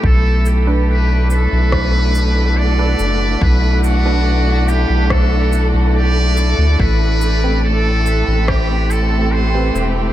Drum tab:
SH |-x-x-x-x|-x-x-x-x|-x-x-x-x|
SD |----r---|----r---|----r---|
BD |o---o---|o---o---|o---o---|